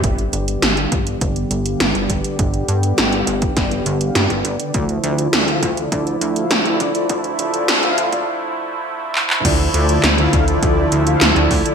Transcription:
<<
  \new Staff \with { instrumentName = "Analog polysynth" } { \time 4/4 \key g \mixolydian \tempo 4 = 102 <g d' g' b' d''>16 r16 <g d' g' b' d''>16 <g d' g' b' d''>16 r16 <g d' g' b' f''>8 <g d' g' b' d''>16 <g d' g' b' d''>8 <g d' g' b' e''>16 <g d' g' b' f''>16 r16 <g d' g' b' d''>8 <g d' g' b' d''>16 | <g d' g' b' d''>16 r16 <g d' g' b' d''>16 <g d' g' b' d''>16 r16 <g d' g' b' f''>8 <g d' g' b' d''>16 <g d' g' b' d''>8 <g d' g' b' e''>16 <g d' g' b' f''>16 r16 <g d' g' b' d''>8 <d d' g' b' d''>16 | <d e' f' a' d''>16 r16 <d e' f' a' d''>16 <d e' f' a' d''>16 r16 <d e' f' a' f''>8 <d e' f' a' d''>16 <d e' f' a' d''>8 <d e' f' a' e''>16 <d e' f' a' f''>16 r16 <d e' f' a' d''>8 <d e' f' a' d''>16 | <d e' f' a' d''>16 r16 <d e' f' a' d''>16 <d e' f' a' d''>16 r16 <d e' f' a' f''>8 <d e' f' a' d''>16 r2 |
<d e' f' a' d''>16 r16 <d e' f' a' d''>16 <d e' f' a' d''>16 r16 <d e' f' a' f''>8 <d e' f' a' d''>16 <d e' f' a' d''>8 <d e' f' a' e''>16 <d e' f' a' f''>16 r16 <d e' f' a' d''>8 <d e' f' a' d''>16 | }
  \new Staff \with { instrumentName = "Analog synth pad" } { \clef bass \time 4/4 \key g \mixolydian <d g b g'>1~ | <d g b g'>1 | <d f a e'>1~ | <d f a e'>1 |
<d f a e'>1 | }
  \new Staff \with { instrumentName = "Analog synth bass" } { \clef bass \time 4/4 \key g \mixolydian g,,8 g,,8 g,,8 g,,8 g,,8 g,,8 g,,16 g,,16 g,,16 r16 | g,,8 g,8 g,,8 g,,8 g,,8 g,,8 g,16 g,,16 g,,16 r16 | d,8 d,8 d,8 d,8 d,8 d,8 d,16 d,16 d,16 r16 | d,8 d,,8 d,8 d,8 r2 |
d,8 d,8 d,8 d,8 d,8 d,8 d,16 d,16 d,16 r16 | }
  \new DrumStaff \with { instrumentName = "Drums" } \drummode { \time 4/4 <hh bd>16 hh16 hh16 hh16 <hh sn>16 hh16 <hh bd>16 hh16 <hh bd>16 hh16 hh16 hh16 <hh sn>16 hh16 <hh bd>16 hh16 | <hh bd>16 hh16 hh16 hh16 <hh sn>16 hh16 hh16 <hh bd>16 <hh bd sn>16 hh16 hh16 hh16 <hh sn>16 hh16 hh16 hh16 | <hh bd>16 hh16 hh16 hh16 <hh sn>16 hh16 <hh bd>16 hh16 <hh bd>16 hh16 hh16 hh16 <hh sn>16 hh16 <hh bd>16 hh16 | <hh bd>16 hh16 hh16 hh16 <hh sn>16 hh16 hh16 <hh bd>16 r4 r8 hc16 hc16 |
<cymc hh bd>8 hh16 hh16 <hc hh sn>16 hh16 <hh bd>16 hh16 <hh bd>8 hh16 hh16 <hc hh sn>16 hh16 <hho bd>16 hh16 | }
>>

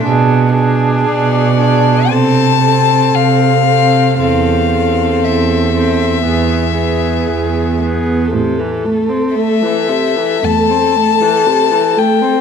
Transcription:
<<
  \new Staff \with { instrumentName = "Violin" } { \time 4/4 \key a \minor \tempo 4 = 58 r4 d''4 a''4 f''4 | f''4 e''2~ e''8 r8 | r4 e''4 a''4. g''8 | }
  \new Staff \with { instrumentName = "Violin" } { \time 4/4 \key a \minor gis'8 gis'4 gis'8 a'8 a'4 a'8 | a'8 a'4 a'8 gis'8 gis'4 gis'8 | a'1 | }
  \new Staff \with { instrumentName = "Viola" } { \time 4/4 \key a \minor d'8 d'4 d'8 c'8 c'4 c'8 | c'8 c'4 c'8 b8 b4 b8 | c16 e16 a16 c'16 a16 e16 c16 e16 a16 c'16 a16 e16 c16 e16 a16 c'16 | }
  \new Staff \with { instrumentName = "Cello" } { \clef bass \time 4/4 \key a \minor b,4 b,4 c4 c4 | e,4 e,4 e,4 e,4 | a,4 r4 e,4 r4 | }
>>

